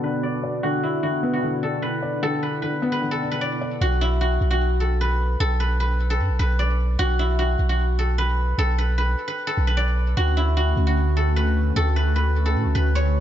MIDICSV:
0, 0, Header, 1, 5, 480
1, 0, Start_track
1, 0, Key_signature, 2, "minor"
1, 0, Tempo, 397351
1, 766, Time_signature, 4, 2, 24, 8
1, 15947, End_track
2, 0, Start_track
2, 0, Title_t, "Guzheng"
2, 0, Program_c, 0, 107
2, 0, Note_on_c, 0, 64, 88
2, 0, Note_on_c, 0, 66, 75
2, 0, Note_on_c, 0, 69, 76
2, 43, Note_on_c, 0, 71, 77
2, 280, Note_on_c, 0, 74, 82
2, 322, Note_off_c, 0, 64, 0
2, 707, Note_off_c, 0, 66, 0
2, 762, Note_on_c, 0, 66, 106
2, 1007, Note_on_c, 0, 64, 83
2, 1238, Note_off_c, 0, 66, 0
2, 1243, Note_on_c, 0, 66, 81
2, 1607, Note_off_c, 0, 66, 0
2, 1612, Note_on_c, 0, 66, 74
2, 1963, Note_off_c, 0, 69, 0
2, 1968, Note_on_c, 0, 69, 77
2, 2199, Note_off_c, 0, 71, 0
2, 2204, Note_on_c, 0, 71, 85
2, 2511, Note_off_c, 0, 74, 0
2, 2686, Note_off_c, 0, 69, 0
2, 2691, Note_on_c, 0, 69, 107
2, 2927, Note_off_c, 0, 71, 0
2, 2931, Note_on_c, 0, 71, 77
2, 3161, Note_off_c, 0, 71, 0
2, 3166, Note_on_c, 0, 71, 81
2, 3522, Note_off_c, 0, 71, 0
2, 3527, Note_on_c, 0, 71, 79
2, 3755, Note_off_c, 0, 69, 0
2, 3760, Note_on_c, 0, 69, 82
2, 4000, Note_off_c, 0, 71, 0
2, 4004, Note_on_c, 0, 71, 75
2, 4122, Note_on_c, 0, 74, 84
2, 4162, Note_off_c, 0, 64, 0
2, 4556, Note_off_c, 0, 66, 0
2, 4607, Note_on_c, 0, 66, 89
2, 4847, Note_on_c, 0, 64, 88
2, 5080, Note_off_c, 0, 66, 0
2, 5085, Note_on_c, 0, 66, 79
2, 5439, Note_off_c, 0, 66, 0
2, 5443, Note_on_c, 0, 66, 81
2, 5796, Note_off_c, 0, 69, 0
2, 5801, Note_on_c, 0, 69, 67
2, 6046, Note_off_c, 0, 71, 0
2, 6051, Note_on_c, 0, 71, 81
2, 6353, Note_off_c, 0, 74, 0
2, 6521, Note_off_c, 0, 69, 0
2, 6526, Note_on_c, 0, 69, 106
2, 6759, Note_off_c, 0, 71, 0
2, 6764, Note_on_c, 0, 71, 82
2, 7002, Note_off_c, 0, 71, 0
2, 7007, Note_on_c, 0, 71, 77
2, 7366, Note_off_c, 0, 69, 0
2, 7371, Note_on_c, 0, 69, 81
2, 7718, Note_off_c, 0, 71, 0
2, 7722, Note_on_c, 0, 71, 81
2, 7961, Note_on_c, 0, 74, 83
2, 8002, Note_off_c, 0, 64, 0
2, 8387, Note_off_c, 0, 66, 0
2, 8443, Note_on_c, 0, 66, 107
2, 8688, Note_on_c, 0, 64, 83
2, 8919, Note_off_c, 0, 66, 0
2, 8924, Note_on_c, 0, 66, 81
2, 9287, Note_off_c, 0, 66, 0
2, 9292, Note_on_c, 0, 66, 74
2, 9644, Note_off_c, 0, 69, 0
2, 9648, Note_on_c, 0, 69, 75
2, 9879, Note_off_c, 0, 71, 0
2, 9884, Note_on_c, 0, 71, 86
2, 10192, Note_off_c, 0, 74, 0
2, 10366, Note_off_c, 0, 69, 0
2, 10371, Note_on_c, 0, 69, 105
2, 10606, Note_off_c, 0, 71, 0
2, 10611, Note_on_c, 0, 71, 79
2, 10841, Note_off_c, 0, 71, 0
2, 10846, Note_on_c, 0, 71, 87
2, 11202, Note_off_c, 0, 71, 0
2, 11207, Note_on_c, 0, 71, 81
2, 11435, Note_off_c, 0, 69, 0
2, 11440, Note_on_c, 0, 69, 86
2, 11680, Note_off_c, 0, 71, 0
2, 11685, Note_on_c, 0, 71, 77
2, 11802, Note_on_c, 0, 74, 88
2, 11843, Note_off_c, 0, 64, 0
2, 12236, Note_off_c, 0, 66, 0
2, 12285, Note_on_c, 0, 66, 92
2, 12525, Note_on_c, 0, 64, 86
2, 12761, Note_off_c, 0, 66, 0
2, 12766, Note_on_c, 0, 66, 81
2, 13124, Note_off_c, 0, 66, 0
2, 13128, Note_on_c, 0, 66, 72
2, 13484, Note_off_c, 0, 69, 0
2, 13489, Note_on_c, 0, 69, 80
2, 13723, Note_off_c, 0, 71, 0
2, 13727, Note_on_c, 0, 71, 79
2, 14033, Note_off_c, 0, 74, 0
2, 14204, Note_off_c, 0, 69, 0
2, 14208, Note_on_c, 0, 69, 105
2, 14445, Note_off_c, 0, 71, 0
2, 14450, Note_on_c, 0, 71, 78
2, 14681, Note_off_c, 0, 71, 0
2, 14686, Note_on_c, 0, 71, 75
2, 15042, Note_off_c, 0, 69, 0
2, 15046, Note_on_c, 0, 69, 79
2, 15396, Note_off_c, 0, 71, 0
2, 15400, Note_on_c, 0, 71, 78
2, 15647, Note_on_c, 0, 73, 88
2, 15680, Note_off_c, 0, 64, 0
2, 15947, Note_off_c, 0, 66, 0
2, 15947, Note_off_c, 0, 69, 0
2, 15947, Note_off_c, 0, 71, 0
2, 15947, Note_off_c, 0, 73, 0
2, 15947, End_track
3, 0, Start_track
3, 0, Title_t, "Analog synth pad"
3, 0, Program_c, 1, 89
3, 0, Note_on_c, 1, 47, 75
3, 0, Note_on_c, 1, 59, 69
3, 0, Note_on_c, 1, 62, 71
3, 0, Note_on_c, 1, 66, 86
3, 727, Note_off_c, 1, 66, 0
3, 766, Note_on_c, 1, 64, 83
3, 4557, Note_off_c, 1, 62, 0
3, 4558, Note_off_c, 1, 47, 0
3, 4558, Note_off_c, 1, 59, 0
3, 4567, Note_off_c, 1, 64, 0
3, 12286, Note_on_c, 1, 50, 76
3, 12286, Note_on_c, 1, 57, 71
3, 12286, Note_on_c, 1, 61, 72
3, 12286, Note_on_c, 1, 66, 86
3, 15947, Note_off_c, 1, 50, 0
3, 15947, Note_off_c, 1, 57, 0
3, 15947, Note_off_c, 1, 61, 0
3, 15947, Note_off_c, 1, 66, 0
3, 15947, End_track
4, 0, Start_track
4, 0, Title_t, "Felt piano"
4, 0, Program_c, 2, 0
4, 0, Control_c, 2, 64, 127
4, 0, Note_on_c, 2, 50, 66
4, 0, Note_on_c, 2, 59, 95
4, 0, Note_on_c, 2, 62, 72
4, 0, Note_on_c, 2, 74, 72
4, 42, Note_off_c, 2, 62, 0
4, 42, Note_on_c, 2, 62, 73
4, 525, Note_off_c, 2, 74, 0
4, 525, Note_on_c, 2, 74, 76
4, 752, Note_off_c, 2, 50, 0
4, 763, Note_off_c, 2, 59, 0
4, 770, Note_on_c, 2, 50, 87
4, 1226, Note_off_c, 2, 50, 0
4, 1244, Note_off_c, 2, 62, 0
4, 1244, Note_on_c, 2, 50, 67
4, 1486, Note_on_c, 2, 59, 93
4, 1706, Note_off_c, 2, 50, 0
4, 1724, Note_on_c, 2, 50, 75
4, 1726, Note_off_c, 2, 74, 0
4, 1966, Note_on_c, 2, 62, 81
4, 2446, Note_on_c, 2, 74, 73
4, 2669, Note_off_c, 2, 50, 0
4, 2686, Note_off_c, 2, 59, 0
4, 2687, Note_on_c, 2, 50, 83
4, 3147, Note_off_c, 2, 50, 0
4, 3165, Note_on_c, 2, 50, 65
4, 3166, Note_off_c, 2, 62, 0
4, 3410, Note_on_c, 2, 59, 95
4, 3627, Note_off_c, 2, 50, 0
4, 3645, Note_on_c, 2, 50, 67
4, 3646, Note_off_c, 2, 74, 0
4, 3889, Note_on_c, 2, 62, 70
4, 4366, Note_on_c, 2, 74, 75
4, 4606, Note_off_c, 2, 50, 0
4, 4606, Note_off_c, 2, 74, 0
4, 4607, Note_off_c, 2, 62, 0
4, 4608, Note_off_c, 2, 59, 0
4, 4622, Control_c, 2, 64, 0
4, 15947, End_track
5, 0, Start_track
5, 0, Title_t, "808-style bass"
5, 0, Program_c, 3, 38
5, 4605, Note_on_c, 3, 35, 112
5, 5297, Note_off_c, 3, 35, 0
5, 5326, Note_on_c, 3, 35, 107
5, 6478, Note_off_c, 3, 35, 0
5, 6526, Note_on_c, 3, 35, 107
5, 7486, Note_on_c, 3, 42, 98
5, 7504, Note_off_c, 3, 35, 0
5, 7606, Note_on_c, 3, 35, 99
5, 7624, Note_off_c, 3, 42, 0
5, 7720, Note_off_c, 3, 35, 0
5, 7726, Note_on_c, 3, 35, 110
5, 8417, Note_off_c, 3, 35, 0
5, 8446, Note_on_c, 3, 35, 112
5, 9137, Note_off_c, 3, 35, 0
5, 9166, Note_on_c, 3, 35, 102
5, 10318, Note_off_c, 3, 35, 0
5, 10366, Note_on_c, 3, 35, 109
5, 11057, Note_off_c, 3, 35, 0
5, 11566, Note_on_c, 3, 35, 108
5, 12257, Note_off_c, 3, 35, 0
5, 12286, Note_on_c, 3, 38, 114
5, 12977, Note_off_c, 3, 38, 0
5, 13006, Note_on_c, 3, 38, 107
5, 14158, Note_off_c, 3, 38, 0
5, 14206, Note_on_c, 3, 38, 107
5, 15166, Note_on_c, 3, 45, 96
5, 15184, Note_off_c, 3, 38, 0
5, 15286, Note_on_c, 3, 38, 99
5, 15304, Note_off_c, 3, 45, 0
5, 15400, Note_off_c, 3, 38, 0
5, 15406, Note_on_c, 3, 38, 104
5, 15947, Note_off_c, 3, 38, 0
5, 15947, End_track
0, 0, End_of_file